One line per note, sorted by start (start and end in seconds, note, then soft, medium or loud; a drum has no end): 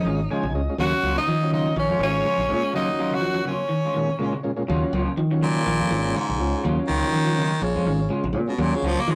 0.00 0.56 D#4 loud
0.00 0.55 D#5 medium
0.05 0.27 G#1 medium
0.05 0.24 D#3 medium
0.05 0.21 G#3 medium
0.05 0.20 C#4 medium
0.05 0.21 F4 loud
0.05 muted clean electric guitar stroke soft
0.30 0.40 C#3 medium
0.30 0.44 F3 medium
0.30 0.44 G#3 medium
0.30 0.45 G#3 medium
0.30 0.44 C#4 medium
0.30 0.45 C#4 medium
0.30 0.43 F4 medium
0.30 0.45 F4 loud
0.30 0.53 G#5 medium
0.43 0.54 A#1 medium
0.43 0.61 C#3 medium
0.43 muted clean electric guitar stroke soft
0.54 0.66 C#2 loud
0.54 0.62 G#3 medium
0.54 0.62 C#4 medium
0.54 0.62 F4 medium
0.54 0.77 D#5 medium
0.54 muted clean electric guitar stroke soft
0.69 0.74 G#3 medium
0.69 0.74 C#4 medium
0.69 0.74 F4 medium
0.78 0.91 D#2 loud
0.78 0.97 C#3 medium
0.78 0.92 F#3 medium
0.78 1.13 F#3 medium
0.78 0.92 A#3 medium
0.78 1.12 C#4 medium
0.78 0.92 C#4 medium
0.78 0.92 F4 medium
0.78 1.13 F#4 medium
0.78 1.14 F#4 loud
0.78 1.15 F#5 loud
0.93 muted clean electric guitar stroke medium
1.03 1.15 C#2 loud
1.03 1.19 F#3 medium
1.03 1.19 A#3 medium
1.03 1.20 C#4 medium
1.03 1.20 F4 medium
1.17 1.24 C#3 medium
1.17 1.50 D#4 loud
1.17 1.50 D#5 medium
1.27 1.72 D#3 medium
1.27 1.38 F3 medium
1.27 muted clean electric guitar stroke soft
1.41 1.74 F#3 medium
1.41 1.74 C#4 medium
1.41 1.74 F4 medium
1.41 muted clean electric guitar stroke soft
1.51 1.69 C#3 medium
1.51 1.65 F#3 medium
1.51 1.65 A#3 medium
1.51 1.65 C#4 medium
1.51 1.75 D#4 medium
1.51 1.65 F4 medium
1.51 1.75 D#5 medium
1.66 muted clean electric guitar stroke soft
1.76 1.89 A#1 loud
1.76 1.94 D#3 medium
1.76 2.00 C#4 medium
1.76 1.99 C#5 medium
1.76 muted clean electric guitar stroke soft
1.89 1.98 F2 medium
1.89 2.00 F3 medium
1.89 2.00 G#3 medium
1.89 2.00 F4 medium
1.89 muted clean electric guitar stroke medium
1.99 2.22 G#1 medium
1.99 2.18 D#3 medium
1.99 2.28 G#3 medium
1.99 2.28 C#4 medium
1.99 2.28 F4 medium
1.99 2.71 C#5 medium
1.99 muted clean electric guitar stroke soft
2.03 2.71 C#4 medium
2.25 2.34 C#3 medium
2.25 2.38 F3 medium
2.25 2.38 G#3 medium
2.25 2.38 C#4 medium
2.25 2.37 F4 medium
2.38 2.51 A#1 medium
2.38 2.56 C#3 medium
2.38 muted clean electric guitar stroke soft
2.49 2.62 A#2 loud
2.49 2.73 G#3 medium
2.49 2.73 C#4 medium
2.49 2.74 F4 medium
2.49 muted clean electric guitar stroke soft
2.73 3.53 D#2 medium
2.73 2.91 C#3 medium
2.73 2.87 F#3 medium
2.73 3.53 F#3 medium
2.73 2.88 A#3 medium
2.73 3.53 C#4 medium
2.73 2.87 C#4 medium
2.73 3.16 D#4 loud
2.73 2.87 F4 medium
2.73 3.53 F#4 medium
2.73 3.15 D#5 medium
2.88 muted clean electric guitar stroke soft
2.98 3.14 F#3 medium
2.98 3.14 A#3 medium
2.98 3.14 C#4 medium
2.98 3.14 F4 medium
3.11 3.19 C#3 medium
3.11 3.47 F#4 loud
3.11 3.48 F#5 medium
3.21 3.31 F3 medium
3.21 muted clean electric guitar stroke soft
3.34 3.43 F3 medium
3.34 muted clean electric guitar stroke soft
3.45 3.63 C#3 medium
3.45 3.61 F#3 medium
3.45 3.61 A#3 medium
3.45 4.41 C#4 medium
3.45 3.60 F4 medium
3.45 muted clean electric guitar stroke medium
3.51 4.42 C#5 medium
3.61 muted clean electric guitar stroke soft
3.69 3.87 D#3 medium
3.69 muted clean electric guitar stroke soft
3.85 3.95 G#3 medium
3.85 3.95 C#4 medium
3.85 3.96 F4 medium
3.94 4.10 A#2 medium
3.94 4.12 D#3 medium
3.94 4.10 G#3 medium
3.94 4.10 C#4 medium
3.94 4.10 F4 medium
3.94 muted clean electric guitar stroke soft
4.19 4.34 A#2 loud
4.19 4.29 C#3 medium
4.19 4.34 G#3 medium
4.19 4.34 C#4 medium
4.19 4.33 C#4 medium
4.19 4.34 F4 medium
4.19 4.33 F4 medium
4.33 4.51 C#3 medium
4.33 muted clean electric guitar stroke medium
4.43 4.51 A#2 medium
4.43 4.52 G#3 medium
4.43 4.51 C#4 medium
4.43 4.52 F4 loud
4.43 muted clean electric guitar stroke soft
4.56 4.63 A#2 medium
4.56 4.63 G#3 medium
4.56 4.63 C#4 medium
4.56 4.63 F4 medium
4.68 4.82 D#2 loud
4.68 4.86 C#3 medium
4.68 5.02 F#3 loud
4.68 4.83 A#3 loud
4.68 5.03 C#4 loud
4.68 4.82 C#4 medium
4.68 5.03 F4 loud
4.68 4.82 F4 medium
4.68 muted clean electric guitar stroke medium
4.83 muted clean electric guitar stroke medium
4.93 5.05 C#2 loud
4.93 5.09 F#3 loud
4.93 5.09 A#3 medium
4.93 5.09 C#4 loud
4.93 5.09 F4 loud
5.06 5.14 C#3 medium
5.17 5.62 D#3 medium
5.17 5.27 F3 medium
5.17 muted clean electric guitar stroke soft
5.31 5.39 D#3 medium
5.31 5.63 F#3 medium
5.31 5.63 C#4 medium
5.31 5.64 F4 medium
5.31 muted clean electric guitar stroke soft
5.42 6.19 A#2 loud
5.42 5.60 C#3 medium
5.42 5.56 F#3 medium
5.42 5.55 A#3 medium
5.42 5.55 C#4 medium
5.42 5.55 F4 medium
5.56 muted clean electric guitar stroke soft
5.66 5.79 A#1 loud
5.66 5.84 D#3 medium
5.66 muted clean electric guitar stroke soft
5.80 5.90 F2 medium
5.80 5.89 G#3 medium
5.80 5.90 C#4 medium
5.80 5.91 F4 medium
5.90 6.13 G#1 loud
5.90 6.09 D#3 medium
5.90 6.17 G#3 medium
5.90 6.18 C#4 medium
5.90 6.18 F4 medium
5.90 muted clean electric guitar stroke soft
6.15 6.65 G#2 medium
6.15 6.25 C#3 medium
6.15 6.29 G#3 medium
6.15 6.28 C#4 medium
6.15 6.28 F4 medium
6.29 6.41 A#1 medium
6.29 6.46 C#3 medium
6.29 muted clean electric guitar stroke soft
6.40 6.53 C#2 loud
6.40 6.64 G#3 medium
6.40 6.63 C#4 medium
6.40 6.63 F4 medium
6.40 muted clean electric guitar stroke soft
6.63 6.77 D#2 loud
6.63 6.81 C#3 medium
6.63 7.42 F#3 medium
6.63 6.78 F#3 medium
6.63 6.78 A#3 medium
6.63 7.43 C#4 medium
6.63 6.78 C#4 medium
6.63 7.42 F4 medium
6.63 6.78 F4 medium
6.79 muted clean electric guitar stroke medium
6.87 7.01 C#2 loud
6.87 7.64 D#3 loud
6.87 7.05 F#3 medium
6.87 7.05 A#3 medium
6.87 7.05 C#4 loud
6.87 7.05 F4 medium
7.02 7.10 C#3 medium
7.12 7.57 D#3 medium
7.12 7.23 F3 medium
7.12 muted clean electric guitar stroke soft
7.26 7.34 F3 medium
7.26 muted clean electric guitar stroke soft
7.38 7.55 C#3 medium
7.38 7.51 F#3 medium
7.38 7.51 A#3 medium
7.38 7.51 C#4 medium
7.38 7.50 F4 medium
7.52 muted clean electric guitar stroke soft
7.62 7.74 A#1 loud
7.62 8.11 C#3 medium
7.62 muted clean electric guitar stroke soft
7.75 7.85 F2 medium
7.75 7.85 G#3 medium
7.75 7.85 C#4 medium
7.75 7.85 F4 medium
7.85 8.08 G#1 medium
7.85 8.04 D#3 medium
7.85 8.00 G#3 medium
7.85 8.00 C#4 medium
7.85 8.01 F4 medium
7.85 muted clean electric guitar stroke soft
8.09 8.20 C#3 medium
8.09 8.24 G#3 medium
8.09 8.23 G#3 medium
8.09 8.24 C#4 medium
8.09 8.23 C#4 medium
8.09 8.25 F4 medium
8.09 8.24 F4 medium
8.24 8.34 A#1 medium
8.24 8.42 C#3 medium
8.24 muted clean electric guitar stroke soft
8.33 8.46 A#2 loud
8.33 8.41 G#3 medium
8.33 8.41 C#4 medium
8.33 8.41 F4 medium
8.33 muted clean electric guitar stroke soft
8.48 8.63 B2 medium
8.48 8.54 G#3 medium
8.48 8.54 C#4 medium
8.48 8.54 F4 medium
8.58 8.71 D#2 loud
8.58 8.77 A#2 medium
8.58 8.93 F#3 medium
8.58 8.73 F#3 medium
8.58 8.73 A#3 medium
8.58 8.93 C#4 medium
8.58 8.72 C#4 medium
8.58 8.93 F4 medium
8.58 8.72 F4 medium
8.58 muted clean electric guitar stroke medium
8.73 8.88 C#3 medium
8.73 muted clean electric guitar stroke soft
8.82 8.95 C#2 loud
8.82 9.01 F3 loud
8.82 8.99 F#3 medium
8.82 8.99 A#3 medium
8.82 9.00 C#4 medium
8.82 9.00 F4 medium
8.97 9.05 C#3 medium
8.97 9.12 A#3 loud
9.07 9.15 D#3 medium
9.07 9.15 F3 medium
9.07 9.15 G#3 medium
9.07 muted clean electric guitar stroke soft